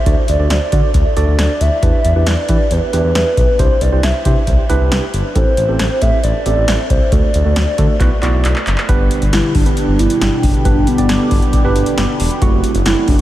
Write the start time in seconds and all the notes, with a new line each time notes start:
0.06 D2 D4 F#4 A4 D5 E5, kick, closed hi-hat
0.28 D2 D5, closed hi-hat
0.39 D2 D4 F#4 A4 D5
0.50 D2 D5, snare, closed hi-hat
0.72 D3 D4 F#4 A4 D5, kick, closed hi-hat
0.94 D2, kick, closed hi-hat
1.05 A4 D5
1.17 D2 D4 F#4 A4 D5, closed hi-hat
1.28 D2
1.39 D2 D5, snare, closed hi-hat
1.61 D2 E5, closed hi-hat
1.83 E2 D4 E4 G4 B4, kick, closed hi-hat
2.05 E2, closed hi-hat
2.16 E2 D4 E4 G4 B4
2.27 E2 D5, snare, closed hi-hat
2.49 E3 D4 E4 G4 B4, kick, closed hi-hat
2.71 E2 B4, closed hi-hat
2.82 G4 B4
2.93 E2 D4 E4 G4 B4, closed hi-hat
3.04 E2
3.15 E2 B4, snare, closed hi-hat
3.37 B1 B4, kick, closed hi-hat
3.59 C2 D4 E4 G4 C5, kick, closed hi-hat
3.81 C2 D5, closed hi-hat
3.92 C2 D4 E4 G4 C5
4.03 C2 E5, snare, closed hi-hat
4.25 C3 D4 E4 G4 C5, kick, closed hi-hat
4.47 C2, kick, closed hi-hat
4.58 G4 C5
4.69 C2 D4 E4 G4 B4, closed hi-hat
4.81 C2
4.92 C2, snare, closed hi-hat
5.14 G1, closed hi-hat
5.36 A1 C4 E4 G4 A4 C5, kick, closed hi-hat
5.57 A1, closed hi-hat
5.69 A1 C4 E4 G4 A4
5.79 A1, snare, closed hi-hat
6.02 A2 C4 E4 G4 A4 E5, kick, closed hi-hat
6.24 A1 D5, closed hi-hat
6.35 G4 A4
6.46 A1 C4 E4 G4 A4 D5, closed hi-hat
6.57 A1
6.68 A1, snare, closed hi-hat
6.90 C2 C5, kick, closed hi-hat
7.12 D2 A3 D4 F#4 A4 D5, kick, closed hi-hat
7.34 D2, closed hi-hat
7.45 D2 A3 D4 F#4 A4
7.56 D2, snare, closed hi-hat
7.78 D3 A3 D4 F#4 A4, kick, closed hi-hat
8.00 B1 B3 E4 F#4 B4, kick, clap, closed hi-hat
8.11 F#4 B4
8.22 B1 B3 E4 F#4 D5, clap, closed hi-hat
8.34 B1
8.45 B1, clap, closed hi-hat
8.56 clap
8.67 F#1, clap, closed hi-hat
8.78 clap
8.89 G1 B2 D3 G3 B3 D4 G4 B4, kick, closed hi-hat
9.00 G1
9.11 closed hi-hat
9.22 G1, closed hi-hat
9.33 G1 E4, snare, closed hi-hat
9.55 G1 D4 G4 B4, kick, open hi-hat
9.66 B3 D4 G4 B4, closed hi-hat
9.77 D4, closed hi-hat
9.88 G1
9.99 G1 E4, closed hi-hat
10.10 closed hi-hat
10.21 G1, snare, closed hi-hat
10.43 F#1 D4, kick, open hi-hat
10.54 closed hi-hat
10.65 G1 B3 D4 G4 B4, kick, closed hi-hat
10.76 G1
10.87 B3, closed hi-hat
10.98 G1 B3 D4 G4 D5, closed hi-hat
11.09 G1, snare, closed hi-hat
11.31 G1, kick, open hi-hat
11.42 closed hi-hat
11.53 kick, closed hi-hat
11.64 G1 B3 D4 G4 B4
11.75 G1, closed hi-hat
11.86 closed hi-hat
11.97 G1, snare, closed hi-hat
12.20 E1, open hi-hat
12.31 closed hi-hat
12.42 F#1 C3 F#3 A3 C4 E4 F#4, kick, closed hi-hat
12.53 F#1
12.64 closed hi-hat
12.75 F#1, closed hi-hat
12.86 F#1 E4, snare, closed hi-hat
13.08 F#1 D4 E4 F#4, kick, open hi-hat